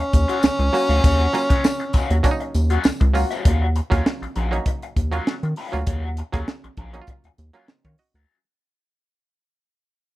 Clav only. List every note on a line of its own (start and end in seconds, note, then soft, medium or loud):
0.73 1.19 F#3 loud
0.73 1.19 A#3 medium
0.73 1.19 C#4 medium
0.73 1.19 F#4 loud
1.33 2.01 F#3 medium
1.33 2.01 A#3 medium
1.33 2.01 C#4 medium
1.33 2.02 F4 medium
2.23 2.91 F#3 medium
2.23 2.91 A#3 medium
2.23 2.92 C#4 medium
2.23 2.32 D4 medium
2.31 2.95 D#4 loud
3.14 3.37 F#3 medium
3.14 3.37 A#3 medium
3.14 3.38 C#4 medium
3.14 3.38 F4 loud
3.90 4.35 F#3 loud
3.90 4.35 A#3 medium
3.90 4.35 C#4 medium
3.90 4.35 F4 loud
4.51 4.95 F#3 medium
4.51 4.95 A#3 medium
4.51 4.96 C#4 medium
4.51 4.96 D#4 loud
5.12 5.56 F#3 loud
5.12 5.56 A#3 loud
5.12 5.56 C#4 medium
5.12 5.57 F4 loud
5.72 6.16 F#3 medium
5.72 6.16 A#3 medium
5.72 6.17 C#4 medium
5.72 6.17 F4 loud
6.32 6.77 F#3 loud
6.32 6.77 A#3 medium
6.32 6.77 C#4 medium
6.32 6.77 G#4 loud
6.93 7.37 F#3 medium
6.93 7.38 A#3 medium
6.93 7.38 C#4 medium
6.93 7.01 D#4 medium
7.02 7.41 F4 loud
7.53 7.98 F#3 loud
7.53 7.98 A#3 medium
7.53 7.98 C#4 medium
7.53 7.69 F4 loud
7.69 7.84 D#4 soft
7.69 7.84 C5 medium
7.85 7.99 F4 medium
7.85 7.98 C#5 medium
7.99 8.14 F#4 medium
7.99 8.14 D#5 medium
8.15 8.44 A#4 medium
8.15 8.44 F#5 medium